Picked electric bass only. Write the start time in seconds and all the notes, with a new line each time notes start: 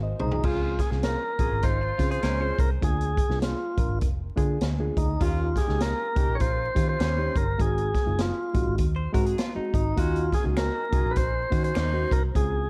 Already playing: G#1
0.21 C2
0.44 C#2
0.92 C2
1.39 A#1
1.52 G#1
1.63 G#1
1.99 C#3
2.23 C#2
2.59 C2
2.82 D2
3.30 C2
3.78 A#1
3.89 G#1
4.02 F1
4.38 D3
4.61 D2
4.97 D2
5.21 D#2
5.69 C#2
6.16 C2
6.28 A#1
6.41 A#1
6.77 D#3
7.00 D#2
7.36 G1
7.60 G#1
8.07 F#1
8.55 A#1
8.67 G#1
8.79 D#2
9.14 G#2
9.57 muted picked electric bass stroke
9.74 G#1
9.98 D#2
10.46 C#2
10.93 C2
11.05 A#1
11.17 A#1
11.52 D#3
11.77 D#2
12.12 C2
12.36 C#2